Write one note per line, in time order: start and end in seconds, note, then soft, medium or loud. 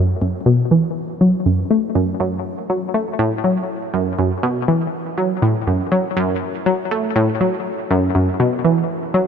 0.00 0.16 F#2 loud
0.22 0.34 F#2 medium
0.46 0.65 B2 medium
0.71 0.90 E3 medium
1.21 1.33 F#3 medium
1.46 1.65 F#2 medium
1.71 1.78 A3 medium
1.95 2.14 F#2 loud
2.20 2.39 F#2 loud
2.70 2.77 F#3 medium
2.94 3.13 A3 medium
3.19 3.32 A2 loud
3.44 3.57 F#3 medium
3.94 4.12 F#2 loud
4.19 4.31 F#2 medium
4.43 4.62 B2 loud
4.68 4.87 E3 medium
5.18 5.30 F#3 medium
5.42 5.55 A2 loud
5.67 5.80 F#2 medium
5.92 6.04 F#3 medium
6.17 6.36 F#2 loud
6.66 6.74 F#3 medium
6.91 7.10 A3 medium
7.16 7.28 A2 loud
7.41 7.53 F#3 medium
7.91 8.09 F#2 loud
8.15 8.28 F#2 medium
8.40 8.59 B2 loud
8.64 8.83 E3 medium
9.14 9.27 F#3 medium